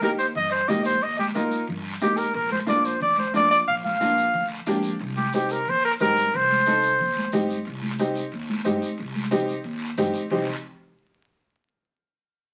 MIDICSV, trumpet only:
0, 0, Header, 1, 2, 480
1, 0, Start_track
1, 0, Key_signature, -3, "minor"
1, 0, Tempo, 331492
1, 1481, Time_signature, 4, 2, 24, 8
1, 18145, End_track
2, 0, Start_track
2, 0, Title_t, "Trumpet"
2, 0, Program_c, 0, 56
2, 47, Note_on_c, 0, 70, 88
2, 154, Note_off_c, 0, 70, 0
2, 265, Note_on_c, 0, 72, 89
2, 376, Note_off_c, 0, 72, 0
2, 521, Note_on_c, 0, 75, 107
2, 738, Note_off_c, 0, 75, 0
2, 746, Note_on_c, 0, 72, 91
2, 992, Note_on_c, 0, 75, 101
2, 1014, Note_off_c, 0, 72, 0
2, 1229, Note_off_c, 0, 75, 0
2, 1238, Note_on_c, 0, 72, 95
2, 1486, Note_on_c, 0, 75, 92
2, 1507, Note_off_c, 0, 72, 0
2, 1713, Note_off_c, 0, 75, 0
2, 1721, Note_on_c, 0, 67, 70
2, 1830, Note_off_c, 0, 67, 0
2, 1949, Note_on_c, 0, 70, 76
2, 2402, Note_off_c, 0, 70, 0
2, 2934, Note_on_c, 0, 67, 86
2, 3148, Note_on_c, 0, 70, 81
2, 3169, Note_off_c, 0, 67, 0
2, 3396, Note_off_c, 0, 70, 0
2, 3406, Note_on_c, 0, 70, 81
2, 3629, Note_off_c, 0, 70, 0
2, 3648, Note_on_c, 0, 72, 77
2, 3755, Note_off_c, 0, 72, 0
2, 3887, Note_on_c, 0, 74, 83
2, 4126, Note_on_c, 0, 72, 76
2, 4148, Note_off_c, 0, 74, 0
2, 4366, Note_off_c, 0, 72, 0
2, 4375, Note_on_c, 0, 74, 93
2, 4594, Note_off_c, 0, 74, 0
2, 4616, Note_on_c, 0, 72, 81
2, 4835, Note_off_c, 0, 72, 0
2, 4861, Note_on_c, 0, 74, 101
2, 5071, Note_off_c, 0, 74, 0
2, 5080, Note_on_c, 0, 74, 99
2, 5189, Note_off_c, 0, 74, 0
2, 5318, Note_on_c, 0, 77, 92
2, 5428, Note_off_c, 0, 77, 0
2, 5577, Note_on_c, 0, 77, 94
2, 6475, Note_off_c, 0, 77, 0
2, 7481, Note_on_c, 0, 67, 80
2, 7708, Note_off_c, 0, 67, 0
2, 7743, Note_on_c, 0, 67, 79
2, 7981, Note_on_c, 0, 70, 91
2, 8003, Note_off_c, 0, 67, 0
2, 8240, Note_on_c, 0, 72, 102
2, 8262, Note_off_c, 0, 70, 0
2, 8460, Note_off_c, 0, 72, 0
2, 8469, Note_on_c, 0, 70, 97
2, 8573, Note_off_c, 0, 70, 0
2, 8709, Note_on_c, 0, 70, 113
2, 9198, Note_on_c, 0, 72, 94
2, 9220, Note_off_c, 0, 70, 0
2, 10626, Note_off_c, 0, 72, 0
2, 18145, End_track
0, 0, End_of_file